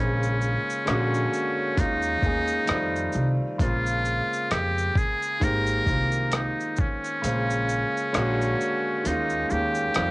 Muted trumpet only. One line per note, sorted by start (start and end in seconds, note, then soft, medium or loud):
0.00 1.81 C#4 medium
1.80 3.36 D#4 loud
3.62 4.53 F4 loud
4.52 4.99 G4 loud
4.98 5.45 G#4 medium
5.44 6.33 A#4 loud
6.35 6.82 D#4 medium
6.80 9.09 C#4 medium
9.07 9.54 D#4 medium
9.52 10.11 G4 loud